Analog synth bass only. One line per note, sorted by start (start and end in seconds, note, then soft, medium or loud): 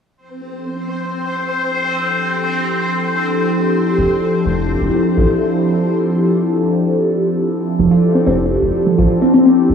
3.98 4.06 F1 loud
4.46 4.75 F1 medium
4.81 4.89 F1 loud
5.17 5.25 A1 medium
7.79 7.87 F1 loud
8.27 8.56 F1 medium
8.62 8.70 F1 loud
8.98 9.06 A1 medium
9.70 9.75 F1 loud